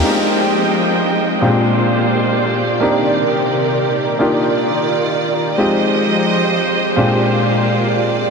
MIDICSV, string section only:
0, 0, Header, 1, 2, 480
1, 0, Start_track
1, 0, Tempo, 500000
1, 7969, End_track
2, 0, Start_track
2, 0, Title_t, "String section"
2, 0, Program_c, 0, 48
2, 35, Note_on_c, 0, 79, 85
2, 36, Note_on_c, 0, 53, 74
2, 36, Note_on_c, 0, 56, 74
2, 36, Note_on_c, 0, 72, 73
2, 36, Note_on_c, 0, 75, 67
2, 1354, Note_off_c, 0, 53, 0
2, 1354, Note_off_c, 0, 75, 0
2, 1354, Note_off_c, 0, 79, 0
2, 1355, Note_off_c, 0, 72, 0
2, 1367, Note_on_c, 0, 65, 72
2, 1368, Note_on_c, 0, 58, 76
2, 1368, Note_on_c, 0, 67, 70
2, 1368, Note_on_c, 0, 72, 66
2, 1368, Note_on_c, 0, 74, 85
2, 2673, Note_off_c, 0, 56, 0
2, 2686, Note_off_c, 0, 65, 0
2, 2686, Note_off_c, 0, 72, 0
2, 2687, Note_off_c, 0, 58, 0
2, 2700, Note_on_c, 0, 70, 71
2, 2701, Note_on_c, 0, 48, 76
2, 2701, Note_on_c, 0, 51, 69
2, 4005, Note_off_c, 0, 74, 0
2, 4018, Note_off_c, 0, 70, 0
2, 4019, Note_off_c, 0, 48, 0
2, 4019, Note_off_c, 0, 51, 0
2, 4032, Note_on_c, 0, 74, 88
2, 4033, Note_on_c, 0, 51, 80
2, 4033, Note_on_c, 0, 65, 72
2, 5325, Note_off_c, 0, 67, 0
2, 5350, Note_off_c, 0, 74, 0
2, 5351, Note_off_c, 0, 51, 0
2, 5351, Note_off_c, 0, 65, 0
2, 5364, Note_on_c, 0, 56, 69
2, 5364, Note_on_c, 0, 67, 70
2, 5364, Note_on_c, 0, 72, 74
2, 5364, Note_on_c, 0, 75, 85
2, 5365, Note_on_c, 0, 53, 80
2, 6682, Note_off_c, 0, 56, 0
2, 6682, Note_off_c, 0, 75, 0
2, 6683, Note_off_c, 0, 53, 0
2, 6695, Note_on_c, 0, 58, 78
2, 6696, Note_on_c, 0, 56, 70
2, 6696, Note_on_c, 0, 65, 71
2, 6696, Note_on_c, 0, 74, 88
2, 7969, Note_off_c, 0, 56, 0
2, 7969, Note_off_c, 0, 58, 0
2, 7969, Note_off_c, 0, 65, 0
2, 7969, Note_off_c, 0, 67, 0
2, 7969, Note_off_c, 0, 72, 0
2, 7969, Note_off_c, 0, 74, 0
2, 7969, End_track
0, 0, End_of_file